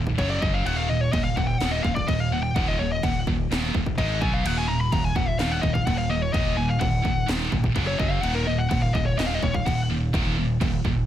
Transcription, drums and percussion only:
0.07 kick medium
0.19 kick medium
0.19 crash medium
0.42 kick loud
0.66 crash medium
1.13 kick medium
1.13 crash medium
1.37 kick medium
1.61 snare loud
1.61 crash medium
1.85 kick medium
1.96 kick medium
2.08 kick medium
2.08 crash medium
2.56 kick loud
2.56 crash medium
3.03 kick medium
3.03 crash medium
3.27 kick medium
3.52 snare loud
3.52 crash medium
3.75 kick medium
3.86 kick medium
3.98 kick medium
3.98 crash medium
4.22 kick loud
4.46 crash medium
4.46 crash loud
4.92 kick medium
4.92 crash medium
5.16 kick medium
5.39 snare loud
5.39 crash medium
5.63 kick medium
5.75 kick medium
5.87 kick medium
5.87 crash medium
6.34 kick loud
6.34 crash medium
6.81 kick medium
6.81 crash medium
7.05 kick medium
7.28 snare loud
7.28 crash medium
7.52 kick medium
7.64 kick medium
7.76 kick medium
7.76 crash medium
8.00 kick loud
8.23 crash medium
8.71 kick loud
8.71 crash medium
8.95 kick medium
9.19 snare loud
9.19 crash medium
9.43 kick medium
9.54 kick medium
9.66 kick medium
9.66 crash medium
10.14 kick loud
10.14 crash medium
10.61 kick medium
10.61 crash medium
10.85 kick medium

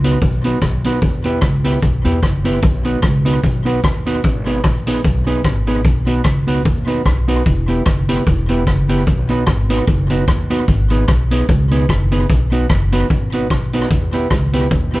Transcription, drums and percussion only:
0.04 closed hi-hat loud
0.22 kick loud
0.22 closed hi-hat medium
0.44 closed hi-hat medium
0.62 kick loud
0.62 cross-stick loud
0.62 closed hi-hat medium
0.84 closed hi-hat loud
1.02 kick loud
1.02 closed hi-hat medium
1.24 closed hi-hat medium
1.41 kick loud
1.41 cross-stick loud
1.41 closed hi-hat medium
1.64 closed hi-hat loud
1.82 kick loud
1.82 closed hi-hat medium
2.05 closed hi-hat medium
2.23 kick loud
2.23 cross-stick medium
2.23 closed hi-hat medium
2.45 closed hi-hat loud
2.62 kick loud
2.62 closed hi-hat medium
2.85 closed hi-hat medium
3.02 kick loud
3.02 cross-stick loud
3.02 closed hi-hat medium
3.26 closed hi-hat loud
3.43 kick loud
3.43 closed hi-hat medium
3.66 closed hi-hat medium
3.84 kick loud
3.84 cross-stick loud
3.84 closed hi-hat medium
4.06 closed hi-hat loud
4.24 kick loud
4.24 closed hi-hat medium
4.46 closed hi-hat medium
4.64 kick loud
4.64 cross-stick loud
4.64 closed hi-hat medium
4.87 closed hi-hat loud
5.04 kick loud
5.04 closed hi-hat medium
5.27 closed hi-hat medium
5.44 kick loud
5.44 cross-stick loud
5.44 closed hi-hat medium
5.67 closed hi-hat medium
5.85 kick loud
5.85 closed hi-hat medium
6.07 closed hi-hat medium
6.24 kick loud
6.24 cross-stick loud
6.24 closed hi-hat medium
6.48 closed hi-hat loud
6.65 kick loud
6.65 closed hi-hat medium
6.87 closed hi-hat medium
7.05 kick medium
7.05 cross-stick loud
7.05 closed hi-hat medium
7.28 closed hi-hat medium
7.46 kick loud
7.46 closed hi-hat medium
7.68 closed hi-hat medium
7.86 kick loud
7.86 cross-stick loud
7.86 closed hi-hat medium
8.09 closed hi-hat loud
8.26 kick loud
8.26 closed hi-hat medium
8.49 closed hi-hat medium
8.67 kick loud
8.67 cross-stick medium
8.67 closed hi-hat medium
8.89 closed hi-hat loud
9.07 kick loud
9.07 closed hi-hat medium
9.29 closed hi-hat medium
9.47 kick loud
9.47 cross-stick loud
9.47 closed hi-hat medium
9.70 closed hi-hat loud
9.87 kick loud
9.87 closed hi-hat medium
10.10 closed hi-hat medium
10.28 kick loud
10.28 cross-stick loud
10.28 closed hi-hat medium
10.50 closed hi-hat loud
10.68 kick loud
10.68 closed hi-hat medium
10.90 closed hi-hat medium
11.08 kick loud
11.08 cross-stick loud
11.08 closed hi-hat medium
11.31 closed hi-hat loud
11.49 kick loud
11.49 closed hi-hat medium
11.71 closed hi-hat medium
11.89 kick loud
11.89 cross-stick loud
11.89 closed hi-hat medium
12.12 closed hi-hat loud
12.30 kick loud
12.30 closed hi-hat medium
12.52 closed hi-hat medium
12.70 kick loud
12.70 cross-stick loud
12.70 closed hi-hat medium
12.92 closed hi-hat loud
13.10 kick loud
13.10 closed hi-hat medium
13.32 closed hi-hat medium
13.50 kick loud
13.50 cross-stick loud
13.50 closed hi-hat medium
13.73 closed hi-hat loud
13.82 cross-stick medium
13.91 kick loud
13.91 closed hi-hat medium
14.13 closed hi-hat medium
14.30 kick loud
14.30 cross-stick loud
14.30 closed hi-hat medium
14.53 closed hi-hat loud
14.71 kick loud
14.71 closed hi-hat medium
14.93 closed hi-hat medium

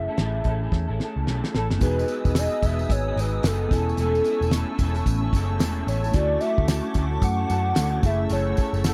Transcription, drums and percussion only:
0.18 snare medium
0.18 closed hi-hat medium
0.44 kick medium
0.44 closed hi-hat medium
0.72 kick medium
0.72 snare soft
1.00 snare medium
1.27 snare medium
1.44 snare medium
1.55 snare medium
1.71 snare medium
1.81 kick loud
1.81 closed hi-hat medium
1.81 tambourine medium
1.99 tambourine soft
2.08 closed hi-hat medium
2.08 tambourine soft
2.25 kick medium
2.25 tambourine soft
2.35 snare loud
2.35 closed hi-hat medium
2.35 tambourine medium
2.62 kick loud
2.62 closed hi-hat medium
2.62 tambourine medium
2.79 tambourine soft
2.90 kick medium
2.90 closed hi-hat medium
2.90 tambourine soft
3.18 closed hi-hat medium
3.18 tambourine medium
3.43 snare loud
3.43 closed hi-hat medium
3.43 tambourine medium
3.71 kick loud
3.71 snare soft
3.71 closed hi-hat medium
3.71 tambourine soft
3.89 tambourine soft
3.97 closed hi-hat medium
3.97 tambourine medium
4.15 tambourine soft
4.24 closed hi-hat medium
4.24 tambourine soft
4.42 tambourine soft
4.51 snare medium
4.51 closed hi-hat medium
4.51 tambourine medium
4.79 kick loud
4.79 closed hi-hat medium
4.79 tambourine medium
4.95 closed hi-hat medium
4.95 tambourine soft
5.06 kick medium
5.06 closed hi-hat medium
5.06 tambourine medium
5.33 kick medium
5.33 closed hi-hat medium
5.33 tambourine medium
5.59 snare loud
5.59 closed hi-hat medium
5.59 tambourine medium
5.88 closed hi-hat medium
5.88 tambourine soft
6.04 tambourine soft
6.13 kick loud
6.13 closed hi-hat medium
6.13 tambourine medium
6.41 closed hi-hat medium
6.41 tambourine soft
6.58 kick medium
6.68 snare loud
6.68 closed hi-hat medium
6.68 tambourine medium
6.94 kick loud
6.94 closed hi-hat medium
6.94 tambourine medium
7.22 kick medium
7.22 closed hi-hat medium
7.22 tambourine medium
7.50 closed hi-hat medium
7.50 tambourine medium
7.75 snare loud
7.75 closed hi-hat medium
7.75 tambourine medium
8.03 kick loud
8.03 closed hi-hat medium
8.03 tambourine soft
8.29 closed hi-hat medium
8.29 tambourine medium
8.57 kick medium
8.57 closed hi-hat medium
8.57 tambourine soft
8.74 tambourine soft
8.84 snare loud
8.84 closed hi-hat medium
8.84 tambourine medium

